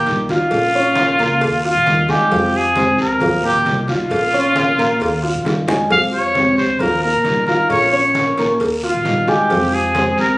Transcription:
Already playing: grand piano A#3 A#4 A#5, trumpet G4
0.06 upright bass B1, nylon-string guitar D#3 G3 D#4 F4, cowbell, high conga, short guiro
0.28 nylon-string guitar G3 D#4 F4, grand piano F4 F5 F6, trumpet F4, high conga, short guiro
0.51 upright bass A#1, nylon-string guitar F3 A#3 C#4 F4, cowbell, long guiro
0.73 nylon-string guitar A#3 C#4, grand piano C#4 C#5 C#6, high conga
0.96 nylon-string guitar F3 A#3 C#4 F4, cowbell, high conga, short guiro
1.19 upright bass C#2, grand piano A#3 A#4 A#5, nylon-string guitar C#4 F4, cowbell, high conga, short guiro
1.41 upright bass D#2, muted nylon-string guitar stroke, cowbell, high conga, long guiro
1.64 grand piano F4 F5 F6, trumpet F4, high conga
1.75 upright bass A#1
1.86 upright bass D#2, nylon-string guitar D#3 G3 D#4 F4, cowbell, high conga, short guiro
2.08 nylon-string guitar G3 D#4 F4, grand piano G#3 G#4 G#5, trumpet G4, high conga, short guiro
2.31 upright bass F2, nylon-string guitar C3 F3 G#3 C4 G4, grand piano F3 F4 F5, cowbell, long guiro
2.53 nylon-string guitar G#3 C4 G4, high conga
2.57 trumpet G#4
2.75 nylon-string guitar C3 F3 G#3 C4 G4, grand piano C4 C5 C6, cowbell, high conga, short guiro
2.98 upright bass D2, nylon-string guitar G#3 C4 G4, trumpet A#4, high conga, short guiro
3.20 upright bass D#2, grand piano F3 F4 F5, cowbell, high conga, low conga, long guiro
3.43 grand piano A#3 A#4 A#5, trumpet G4, high conga, low conga
3.54 upright bass A#1
3.65 upright bass C2, nylon-string guitar D#3 G3 D#4 F4, cowbell, high conga, short guiro
3.88 nylon-string guitar G3 D#4 F4, grand piano F4 F5 F6, trumpet F4, high conga, short guiro
4.10 upright bass A#1, nylon-string guitar F3 A#3 C#4 F4, cowbell, high conga, long guiro
4.33 nylon-string guitar A#3 C#4 F4, grand piano C#4 C#5 C#6, high conga
4.54 nylon-string guitar F3 A#3 C#4 F4, cowbell, high conga, short guiro
4.77 upright bass A#1, grand piano A#3 A#4 A#5, nylon-string guitar A#3 C#4 F4, cowbell, high conga, short guiro
4.99 upright bass D#2, muted nylon-string guitar stroke, cowbell, high conga, long guiro
5.23 grand piano F4 F5 F6, high conga
5.34 upright bass A#1
5.44 upright bass G2, nylon-string guitar D#3 G3 D#4 F4, cowbell, high bongo, high conga, short guiro
5.67 upright bass F2, nylon-string guitar G3 D#4 F4, grand piano G#3 G#4 G#5, low bongo, high conga, short guiro
5.89 upright bass F2, nylon-string guitar C3 F3 G#3 C4 G4, grand piano F3 F4, trumpet F5, cowbell, long guiro
6.12 nylon-string guitar G#3 C4 G4, trumpet C#5, high conga
6.34 nylon-string guitar C3 F3 G#3 C4 G4, grand piano C4 C5 C6, cowbell, high conga, short guiro
6.57 upright bass D2, nylon-string guitar G#3 C4 G4, trumpet C5, high conga, short guiro
6.79 upright bass D#2, grand piano F3 F4 F5, trumpet A#4, muted nylon-string guitar stroke, cowbell, high conga, low conga, long guiro
7.02 grand piano A#3 A#4 A#5, trumpet A#4, high conga
7.14 upright bass A#1
7.24 upright bass B1, nylon-string guitar D#3 G3 D#4 F4, cowbell, high conga, short guiro
7.47 nylon-string guitar G3 D#4 F4, grand piano F4 F5 F6, trumpet A#4, high conga, short guiro
7.69 upright bass A#1, nylon-string guitar F3 A#3 C#4 F4, trumpet C#5, cowbell, high conga, long guiro
7.92 nylon-string guitar A#3 C#4 F4, grand piano C#4 C#5 C#6, trumpet C#5, high conga
8.13 nylon-string guitar F3 A#3 C#4 F4, cowbell, high conga, short guiro
8.37 upright bass A#1, grand piano A#3 A#4 A#5, nylon-string guitar A#3 C#4 F4, cowbell, high conga, short guiro
8.60 upright bass D#2, muted nylon-string guitar stroke, cowbell, high conga, long guiro
8.83 grand piano F4 F5 F6, trumpet F4, high conga
8.94 upright bass A#1
9.04 upright bass A#1, nylon-string guitar D#3 G3 D#4 F4, cowbell, high conga, short guiro
9.27 nylon-string guitar G3 D#4 F4, grand piano G#3 G#4 G#5, trumpet G4, high conga, short guiro
9.50 upright bass F2, nylon-string guitar C3 F3 G#3 C4 G4, grand piano F3 F4 F5, cowbell, high conga, long guiro
9.73 nylon-string guitar G#3 C4 G4, trumpet G#4, high conga
9.95 nylon-string guitar C3 F3 G#3 C4 G4, grand piano C4 C5 C6, cowbell, high conga, short guiro
10.17 upright bass D2, nylon-string guitar G#3 C4 G4, trumpet A#4, high conga, short guiro

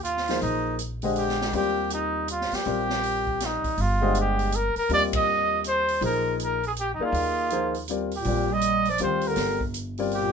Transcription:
Already playing: upright bass D#2
0.04 trumpet F4, closed hi-hat
0.17 snare
0.28 grand piano F3 A#3 D#4 G#4 C5, snare, open hi-hat
0.41 upright bass A#1, trumpet D#4, open hi-hat
0.79 closed hi-hat
1.02 grand piano D3 G#3 G4 C5 D#5, open hi-hat
1.16 trumpet G4, open hi-hat
1.29 snare
1.41 snare
1.53 upright bass D#2, grand piano G3 C4 F4 A#4 D5, trumpet G4, open hi-hat
1.90 trumpet D#4, closed hi-hat
2.28 trumpet F4, closed hi-hat
2.41 snare
2.52 trumpet G4, muted upright bass stroke, snare, open hi-hat
2.65 upright bass A#1, grand piano G3 C4 F4 A#4 D5, open hi-hat
2.90 snare
3.03 open hi-hat
3.27 kick
3.40 snare, closed hi-hat
3.45 trumpet D#4
3.64 muted upright bass stroke, kick, open hi-hat
3.78 upright bass G1, trumpet F4, open hi-hat
4.01 grand piano D3 G#3 G4 C5 D#5
4.15 closed hi-hat
4.20 trumpet G4
4.39 open hi-hat
4.52 trumpet A#4, closed hi-hat
4.76 trumpet A#4, muted upright bass stroke, open hi-hat
4.89 upright bass D#2, grand piano G3 C4 F4 A#4 D#5, open hi-hat
4.94 trumpet D5
5.13 trumpet D#5, kick, ride
5.64 trumpet C5, closed hi-hat
5.88 open hi-hat
6.01 upright bass A#1, grand piano F3 A#3 D#4 G#4 C5, trumpet A#4, open hi-hat
6.40 closed hi-hat
6.44 trumpet A#4
6.63 trumpet G#4, open hi-hat
6.77 trumpet G4, closed hi-hat
6.94 trumpet D#4
6.99 grand piano A#3 D#4 G#4 D5 F5, muted upright bass stroke
7.05 trumpet F4
7.12 upright bass D#2, open hi-hat
7.50 grand piano F3 A#3 D#4 G#4 C5, closed hi-hat
7.74 open hi-hat
7.88 grand piano G3 C4 F4 A#4 D5, closed hi-hat
8.11 bass clarinet A#2, open hi-hat
8.16 trumpet G4
8.24 upright bass A#1, grand piano G3 C4 F4 A#4 D5, open hi-hat
8.51 bass clarinet G3, trumpet D#5
8.61 closed hi-hat
8.85 open hi-hat
8.89 bass clarinet F3, trumpet D5
8.98 upright bass D2, grand piano G3 C4 F4 A#4 C5, closed hi-hat
9.03 bass clarinet D#3, trumpet C5
9.21 open hi-hat
9.27 bass clarinet D3, trumpet A#4
9.36 upright bass G1, snare, open hi-hat
9.60 kick
9.74 closed hi-hat
9.98 grand piano G3 C4 F4 A#4 D5, open hi-hat
10.11 bass clarinet A#2, trumpet G4, open hi-hat

